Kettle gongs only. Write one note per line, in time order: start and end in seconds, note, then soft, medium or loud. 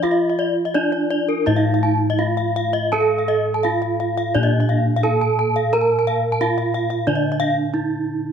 0.00 0.71 F3 soft
0.00 2.16 F4 medium
0.76 0.84 D#4 soft
1.47 3.60 A2 soft
2.20 2.28 D#4 soft
2.93 5.01 A4 medium
3.65 3.73 D#4 soft
4.35 6.37 A#2 soft
5.05 5.13 D#4 soft
5.74 7.70 A#4 medium
6.41 6.49 D#4 soft
7.08 8.32 D3 soft
7.74 7.82 D#4 soft